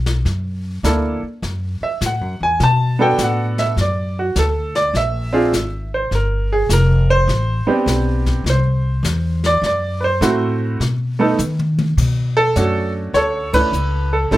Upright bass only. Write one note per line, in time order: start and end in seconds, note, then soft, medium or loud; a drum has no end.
0.00 0.23 B1 medium
0.25 0.82 F#2 medium
0.83 1.20 D2 medium
1.23 muted upright bass stroke soft
1.42 1.79 F#2 medium
1.81 muted upright bass stroke soft
2.01 2.21 A2 medium
2.21 2.40 F#2 medium
2.41 2.59 E2 medium
2.60 3.17 B2 medium
3.18 3.75 A2 medium
3.77 4.34 F#2 medium
4.36 4.92 D2 medium
4.94 5.51 A#1 medium
5.53 6.10 G#1 medium
6.11 6.68 G1 medium
6.69 7.26 F1 loud
7.28 7.64 A1 medium
7.66 muted upright bass stroke soft
7.86 8.43 B1 medium
8.44 9.02 C2 medium
9.03 9.60 E2 medium
9.62 10.19 F#2 medium
10.21 10.78 A2 medium
10.80 11.37 B2 medium
11.39 11.96 D#3 loud
11.97 12.54 B2 medium
12.56 13.13 F#2 medium
13.14 13.71 D2 medium
13.73 14.30 C#2 medium
14.31 14.37 A1 medium